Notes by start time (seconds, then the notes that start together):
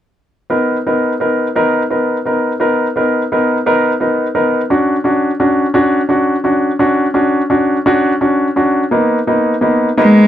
0.50 B3 D#4 A#4
0.86 B3 D#4 A#4
1.20 B3 D#4 A#4
1.56 B3 D#4 A#4
1.90 B3 D#4 A#4
2.26 B3 D#4 A#4
2.60 B3 D#4 A#4
2.96 B3 D#4 A#4
3.32 B3 D#4 A#4
3.66 B3 D#4 A#4
4.00 B3 D#4 A#4
4.35 B3 D#4 A#4
4.70 C#4 D4 F#4
5.04 C#4 D4 F#4
5.40 C#4 D4 F#4
5.74 C#4 D4 F#4
6.09 C#4 D4 F#4
6.44 C#4 D4 F#4
6.79 C#4 D4 F#4
7.14 C#4 D4 F#4
7.50 C#4 D4 F#4
7.86 C#4 D4 F#4
8.21 C#4 D4 F#4
8.56 C#4 D4 F#4
8.91 A#3 B3 D#4
9.27 A#3 B3 D#4
9.61 A#3 B3 D#4
9.97 A#3 B3 D#4
10.02 G#3